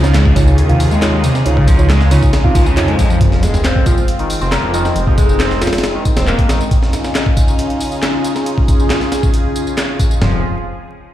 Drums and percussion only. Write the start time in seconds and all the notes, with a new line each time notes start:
0.04 snare, tambourine
0.14 snare, clap, closed hi-hat, tambourine
0.26 kick
0.36 kick, closed hi-hat, open hi-hat, tambourine
0.48 tambourine
0.58 closed hi-hat, tambourine
0.69 closed hi-hat
0.80 open hi-hat, tambourine
0.91 tambourine
1.02 snare, clap, closed hi-hat, tambourine
1.24 closed hi-hat, open hi-hat, tambourine
1.35 snare, tambourine
1.46 closed hi-hat, tambourine
1.57 kick
1.67 kick, closed hi-hat, open hi-hat, tambourine
1.79 tambourine
1.89 snare, clap, closed hi-hat, tambourine
2.01 snare
2.11 snare, closed hi-hat, open hi-hat, tambourine
2.23 kick, tambourine
2.33 snare, closed hi-hat, tambourine
2.45 kick
2.55 kick, closed hi-hat, open hi-hat, tambourine
2.66 tambourine
2.77 clap, closed hi-hat, open hi-hat, tambourine
2.88 closed hi-hat
2.99 kick, closed hi-hat, open hi-hat, tambourine
3.10 tambourine
3.21 kick, closed hi-hat, tambourine
3.32 snare
3.43 snare, closed hi-hat, tambourine
3.54 snare, tambourine
3.64 snare, clap, closed hi-hat, tambourine
3.76 kick
3.86 kick, closed hi-hat, tambourine
3.98 tambourine
4.08 closed hi-hat, tambourine
4.19 closed hi-hat
4.30 open hi-hat, tambourine
4.41 tambourine
4.52 snare, clap, closed hi-hat, tambourine
4.74 closed hi-hat, tambourine
4.85 snare, tambourine
4.96 closed hi-hat, tambourine
5.07 kick
5.18 kick, closed hi-hat, tambourine
5.29 tambourine
5.40 snare, clap, closed hi-hat, tambourine
5.51 snare
5.61 snare, closed hi-hat, tambourine
5.67 snare, closed hi-hat
5.73 snare, closed hi-hat, tambourine
5.78 snare, closed hi-hat
5.83 snare, closed hi-hat, tambourine
6.05 kick, closed hi-hat, tambourine
6.17 snare, closed hi-hat, tambourine
6.27 clap, tambourine
6.39 kick, closed hi-hat
6.49 snare, closed hi-hat, tambourine
6.61 tambourine
6.71 kick, closed hi-hat, tambourine
6.83 snare
6.93 snare, closed hi-hat, tambourine
7.04 snare, tambourine
7.15 snare, clap, closed hi-hat, tambourine
7.26 kick
7.37 kick, closed hi-hat, tambourine
7.48 tambourine
7.58 closed hi-hat, tambourine
7.70 closed hi-hat
7.81 open hi-hat, tambourine
7.92 tambourine
8.03 snare, clap, closed hi-hat, tambourine
8.24 closed hi-hat, tambourine
8.36 snare, tambourine
8.46 closed hi-hat, tambourine
8.58 kick
8.68 kick, closed hi-hat, tambourine
8.79 tambourine
8.90 snare, clap, closed hi-hat, tambourine
9.01 snare
9.12 snare, closed hi-hat, tambourine
9.23 kick, tambourine
9.34 closed hi-hat, tambourine
9.56 closed hi-hat, tambourine
9.67 tambourine
9.77 snare, clap, closed hi-hat, tambourine
9.99 kick, closed hi-hat, tambourine
10.11 tambourine
10.22 snare, floor tom